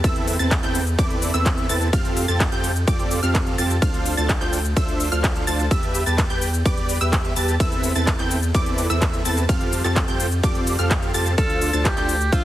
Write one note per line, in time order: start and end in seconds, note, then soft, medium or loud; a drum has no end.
0.04 0.37 E2 loud
0.04 0.37 C4 medium
0.04 0.37 E4 medium
0.04 0.37 A4 medium
0.04 0.37 B4 medium
0.04 0.37 E5 medium
0.04 0.37 E6 medium
0.04 kick loud
0.04 closed hi-hat medium
0.04 ride medium
0.04 shaker soft
0.16 closed hi-hat soft
0.28 open hi-hat loud
0.28 shaker medium
0.39 0.61 E2 loud
0.39 0.60 C4 medium
0.39 0.60 E4 medium
0.39 0.60 A4 medium
0.39 0.60 B4 medium
0.39 0.60 A5 loud
0.39 0.60 A6 loud
0.39 closed hi-hat soft
0.39 shaker soft
0.51 kick loud
0.51 clap loud
0.51 closed hi-hat medium
0.51 ride medium
0.51 shaker soft
0.63 0.96 E2 loud
0.63 0.82 C4 loud
0.63 0.82 E4 medium
0.63 0.82 A4 medium
0.63 0.82 B4 medium
0.63 0.82 G5 loud
0.63 0.82 G6 loud
0.63 clap soft
0.63 closed hi-hat soft
0.75 open hi-hat loud
0.75 shaker medium
0.87 closed hi-hat soft
0.87 shaker soft
0.99 1.32 E2 loud
0.99 1.31 C4 medium
0.99 1.31 E4 medium
0.99 1.31 A4 medium
0.99 1.31 B4 medium
0.99 1.31 D5 medium
0.99 1.31 D6 medium
0.99 kick loud
0.99 closed hi-hat medium
0.99 ride medium
0.99 shaker soft
1.10 closed hi-hat soft
1.22 open hi-hat loud
1.22 shaker medium
1.34 1.67 E2 loud
1.34 1.67 C4 medium
1.34 1.67 E4 medium
1.34 1.67 A4 medium
1.34 1.67 B4 medium
1.34 1.67 E5 loud
1.34 1.67 E6 loud
1.34 closed hi-hat soft
1.34 shaker soft
1.46 kick loud
1.46 clap loud
1.46 closed hi-hat medium
1.46 ride medium
1.46 shaker soft
1.58 closed hi-hat soft
1.69 1.91 E2 loud
1.69 1.88 C4 medium
1.69 1.88 E4 medium
1.69 1.88 A4 medium
1.69 1.88 B4 medium
1.69 1.88 A5 loud
1.69 1.88 A6 loud
1.69 open hi-hat loud
1.69 shaker medium
1.81 closed hi-hat soft
1.81 shaker soft
1.93 2.26 F2 medium
1.93 2.26 C4 medium
1.93 2.26 F4 medium
1.93 2.26 G4 medium
1.93 2.26 A4 medium
1.93 2.26 F5 medium
1.93 2.26 F6 medium
1.93 kick loud
1.93 closed hi-hat medium
1.93 ride medium
1.93 shaker soft
2.05 closed hi-hat soft
2.17 open hi-hat loud
2.17 shaker medium
2.28 2.50 F2 loud
2.28 2.49 C4 medium
2.28 2.49 F4 medium
2.28 2.49 G4 medium
2.28 2.49 A4 medium
2.28 2.49 A5 loud
2.28 2.49 A6 loud
2.28 closed hi-hat soft
2.28 shaker soft
2.40 kick loud
2.40 clap loud
2.40 closed hi-hat medium
2.40 ride medium
2.40 shaker soft
2.52 2.85 F2 medium
2.52 2.71 C4 medium
2.52 2.71 F4 medium
2.52 2.71 G4 medium
2.52 2.71 A4 medium
2.52 2.71 G5 loud
2.52 2.71 G6 loud
2.52 closed hi-hat soft
2.64 open hi-hat loud
2.64 shaker medium
2.76 closed hi-hat soft
2.76 shaker soft
2.87 3.21 F2 medium
2.87 3.20 C4 medium
2.87 3.20 F4 medium
2.87 3.20 G4 medium
2.87 3.20 A4 medium
2.87 3.20 D5 medium
2.87 3.20 D6 medium
2.87 kick loud
2.87 closed hi-hat medium
2.87 ride medium
2.87 shaker soft
2.99 closed hi-hat soft
3.11 open hi-hat loud
3.11 shaker medium
3.23 3.56 F2 loud
3.23 3.56 C4 medium
3.23 3.56 F4 medium
3.23 3.56 G4 medium
3.23 3.56 A4 medium
3.23 3.56 F5 loud
3.23 3.55 F6 loud
3.23 closed hi-hat soft
3.23 shaker soft
3.35 kick loud
3.35 clap loud
3.35 closed hi-hat medium
3.35 ride medium
3.35 shaker soft
3.47 closed hi-hat soft
3.58 3.80 F2 loud
3.58 3.77 C4 medium
3.58 3.77 F4 medium
3.58 3.77 G4 medium
3.58 3.77 A4 medium
3.58 3.77 A5 loud
3.58 3.77 A6 loud
3.58 open hi-hat loud
3.58 shaker medium
3.70 closed hi-hat soft
3.70 shaker soft
3.82 4.15 D2 loud
3.82 4.15 D4 medium
3.82 4.15 F4 medium
3.82 4.15 A4 medium
3.82 4.15 C5 medium
3.82 4.15 F5 medium
3.82 4.15 F6 medium
3.82 kick loud
3.82 closed hi-hat medium
3.82 ride medium
3.82 shaker soft
3.94 closed hi-hat soft
4.06 open hi-hat loud
4.06 shaker medium
4.17 4.39 D2 loud
4.17 4.38 D4 medium
4.17 4.38 F4 medium
4.17 4.38 A4 medium
4.17 4.38 C5 medium
4.17 4.38 A5 loud
4.17 4.38 A6 loud
4.17 closed hi-hat soft
4.17 shaker soft
4.29 kick loud
4.29 clap loud
4.29 closed hi-hat medium
4.29 ride medium
4.29 shaker soft
4.41 4.74 D2 loud
4.41 4.60 D4 medium
4.41 4.60 F4 medium
4.41 4.60 A4 medium
4.41 4.60 C5 medium
4.41 4.60 G5 loud
4.41 4.60 G6 loud
4.41 clap soft
4.41 closed hi-hat soft
4.53 open hi-hat loud
4.53 shaker medium
4.65 closed hi-hat soft
4.65 shaker soft
4.76 5.10 D2 loud
4.76 5.09 D4 medium
4.76 5.09 F4 medium
4.76 5.09 A4 medium
4.76 5.09 C5 medium
4.76 5.09 E5 medium
4.76 5.09 E6 medium
4.76 kick loud
4.76 closed hi-hat medium
4.76 ride medium
4.76 shaker soft
4.88 closed hi-hat soft
5.00 open hi-hat loud
5.00 shaker medium
5.12 5.45 D2 loud
5.12 5.44 D4 medium
5.12 5.45 F4 medium
5.12 5.44 A4 medium
5.12 5.44 C5 medium
5.12 5.44 F5 loud
5.12 5.45 F6 loud
5.12 closed hi-hat soft
5.12 shaker soft
5.24 kick loud
5.24 clap loud
5.24 closed hi-hat medium
5.24 ride medium
5.24 shaker soft
5.36 closed hi-hat soft
5.47 5.69 D2 loud
5.47 5.66 D4 medium
5.47 5.66 F4 medium
5.47 5.66 A4 medium
5.47 5.66 C5 medium
5.47 5.66 A5 loud
5.47 5.66 A6 loud
5.47 open hi-hat loud
5.47 shaker medium
5.59 closed hi-hat soft
5.59 shaker soft
5.71 6.04 E2 medium
5.71 6.04 G4 medium
5.71 6.04 B4 medium
5.71 6.04 E5 medium
5.71 6.04 E6 medium
5.71 kick loud
5.71 closed hi-hat medium
5.71 ride medium
5.71 shaker soft
5.83 closed hi-hat soft
5.95 open hi-hat loud
5.95 shaker medium
6.06 6.28 E2 loud
6.06 6.27 G4 medium
6.06 6.27 B4 medium
6.06 6.27 A5 medium
6.06 6.27 A6 loud
6.06 closed hi-hat soft
6.06 shaker soft
6.18 kick loud
6.18 clap loud
6.18 closed hi-hat medium
6.18 ride medium
6.18 shaker soft
6.30 6.63 E2 loud
6.30 6.49 G4 medium
6.30 6.49 B4 medium
6.30 6.49 G5 loud
6.30 6.49 G6 loud
6.30 closed hi-hat soft
6.42 open hi-hat loud
6.42 shaker medium
6.54 closed hi-hat soft
6.54 shaker soft
6.66 6.99 E2 loud
6.66 6.98 G4 medium
6.66 6.98 B4 medium
6.66 6.98 D5 medium
6.66 6.98 D6 medium
6.66 kick loud
6.66 closed hi-hat medium
6.66 ride medium
6.66 shaker soft
6.77 closed hi-hat soft
6.89 open hi-hat loud
6.89 shaker medium
7.01 7.34 E2 loud
7.01 7.34 G4 medium
7.01 7.34 B4 medium
7.01 7.34 E5 loud
7.01 7.34 E6 loud
7.01 closed hi-hat soft
7.01 shaker soft
7.13 kick loud
7.13 clap loud
7.13 closed hi-hat medium
7.13 ride medium
7.13 shaker soft
7.25 closed hi-hat soft
7.36 7.58 E2 loud
7.36 7.55 G4 medium
7.36 7.55 B4 medium
7.36 7.55 A5 loud
7.36 7.55 A6 loud
7.36 open hi-hat loud
7.36 shaker medium
7.48 closed hi-hat soft
7.48 shaker soft
7.60 7.93 E2 loud
7.60 7.93 C4 medium
7.60 7.93 E4 medium
7.60 7.93 A4 medium
7.60 7.93 B4 medium
7.60 7.93 E5 medium
7.60 7.93 E6 medium
7.60 kick loud
7.60 closed hi-hat medium
7.60 ride medium
7.60 shaker soft
7.72 closed hi-hat soft
7.84 open hi-hat loud
7.84 shaker medium
7.95 8.17 E2 loud
7.95 8.16 C4 medium
7.95 8.16 E4 medium
7.95 8.16 A4 medium
7.95 8.16 B4 medium
7.95 8.16 A5 loud
7.95 8.16 A6 loud
7.95 closed hi-hat soft
7.95 shaker soft
8.07 kick loud
8.07 clap loud
8.07 closed hi-hat medium
8.07 ride medium
8.07 shaker soft
8.19 8.52 E2 loud
8.19 8.38 C4 medium
8.19 8.38 E4 medium
8.19 8.38 A4 medium
8.19 8.38 B4 medium
8.19 8.38 G5 loud
8.19 8.38 G6 loud
8.19 clap soft
8.19 closed hi-hat soft
8.31 open hi-hat loud
8.31 shaker medium
8.43 closed hi-hat soft
8.43 shaker soft
8.54 8.88 E2 loud
8.54 8.87 C4 medium
8.54 8.87 E4 medium
8.54 8.87 A4 medium
8.54 8.87 B4 medium
8.54 8.87 D5 medium
8.54 8.87 D6 medium
8.54 kick loud
8.54 closed hi-hat medium
8.54 ride medium
8.54 shaker soft
8.66 closed hi-hat soft
8.78 open hi-hat loud
8.78 shaker medium
8.90 9.23 E2 loud
8.90 9.22 C4 medium
8.90 9.22 E4 medium
8.90 9.22 A4 medium
8.90 9.22 B4 medium
8.90 9.22 E5 loud
8.90 9.23 E6 loud
8.90 closed hi-hat soft
8.90 shaker soft
9.02 kick loud
9.02 clap loud
9.02 closed hi-hat medium
9.02 ride medium
9.02 shaker soft
9.13 closed hi-hat soft
9.25 9.47 E2 loud
9.25 9.44 C4 medium
9.25 9.44 E4 medium
9.25 9.44 A4 medium
9.25 9.44 B4 medium
9.25 9.44 A5 loud
9.25 9.44 A6 loud
9.25 open hi-hat loud
9.25 shaker medium
9.37 closed hi-hat soft
9.37 shaker soft
9.49 9.82 F2 loud
9.49 9.81 C4 medium
9.49 9.81 F4 medium
9.49 9.81 G4 medium
9.49 9.81 A4 medium
9.49 9.81 F5 medium
9.49 9.82 F6 medium
9.49 kick loud
9.49 closed hi-hat medium
9.49 ride medium
9.49 shaker soft
9.61 closed hi-hat soft
9.73 open hi-hat loud
9.73 shaker medium
9.84 10.06 F2 loud
9.84 10.05 C4 medium
9.84 10.05 F4 medium
9.84 10.05 G4 medium
9.84 10.05 A4 medium
9.84 10.05 A5 loud
9.84 10.05 A6 loud
9.84 clap soft
9.84 closed hi-hat soft
9.84 shaker soft
9.96 kick loud
9.96 clap loud
9.96 closed hi-hat medium
9.96 ride medium
9.96 shaker soft
10.08 10.41 F2 medium
10.08 10.27 C4 medium
10.08 10.27 F4 medium
10.08 10.27 G4 medium
10.08 10.27 A4 medium
10.08 10.27 G5 loud
10.08 10.27 G6 loud
10.08 closed hi-hat soft
10.20 open hi-hat loud
10.20 shaker medium
10.32 closed hi-hat soft
10.32 shaker soft
10.43 10.77 F2 medium
10.43 10.76 C4 medium
10.43 10.76 F4 medium
10.43 10.76 G4 medium
10.43 10.76 A4 medium
10.43 10.76 D5 medium
10.43 10.76 D6 medium
10.43 kick loud
10.43 closed hi-hat medium
10.43 ride medium
10.43 shaker soft
10.55 closed hi-hat soft
10.67 open hi-hat loud
10.67 shaker medium
10.79 11.12 F2 loud
10.79 11.11 C4 medium
10.79 11.11 F4 medium
10.79 11.11 G4 medium
10.79 11.11 A4 medium
10.79 11.11 F5 loud
10.79 11.11 F6 loud
10.79 closed hi-hat soft
10.79 shaker soft
10.91 kick loud
10.91 clap loud
10.91 closed hi-hat medium
10.91 ride medium
10.91 shaker soft
11.03 closed hi-hat soft
11.14 11.36 F2 medium
11.14 11.33 C4 medium
11.14 11.33 F4 medium
11.14 11.33 G4 medium
11.14 11.33 A4 medium
11.14 11.33 A5 loud
11.14 11.33 A6 loud
11.14 open hi-hat loud
11.14 shaker medium
11.26 closed hi-hat soft
11.26 shaker soft
11.38 11.71 D2 loud
11.38 11.71 D4 medium
11.38 11.71 F4 medium
11.38 11.86 A4 loud
11.38 11.71 A4 medium
11.38 11.71 C5 medium
11.38 11.71 F5 medium
11.38 11.71 F6 medium
11.38 kick loud
11.38 closed hi-hat medium
11.38 ride medium
11.38 shaker soft
11.50 closed hi-hat soft
11.62 open hi-hat loud
11.62 shaker medium
11.73 11.95 D2 loud
11.73 11.94 D4 medium
11.73 11.94 F4 medium
11.73 11.94 A4 medium
11.73 11.94 C5 medium
11.73 11.94 A5 loud
11.73 11.94 A6 loud
11.73 closed hi-hat soft
11.73 shaker soft
11.85 12.34 G4 loud
11.85 kick loud
11.85 clap loud
11.85 closed hi-hat medium
11.85 ride medium
11.85 shaker soft
11.97 12.30 D2 loud
11.97 12.16 D4 medium
11.97 12.16 F4 medium
11.97 12.16 A4 medium
11.97 12.16 C5 medium
11.97 12.16 G5 loud
11.97 12.16 G6 loud
11.97 clap soft
11.97 closed hi-hat soft
12.09 open hi-hat loud
12.09 shaker medium
12.21 closed hi-hat soft
12.21 shaker soft
12.32 12.44 D2 loud
12.32 12.44 D4 medium
12.32 12.44 F4 loud
12.32 12.44 F4 medium
12.32 12.44 A4 medium
12.32 12.44 C5 medium
12.32 12.44 E5 medium
12.32 12.44 E6 medium
12.32 kick loud
12.32 closed hi-hat medium
12.32 ride medium
12.32 shaker soft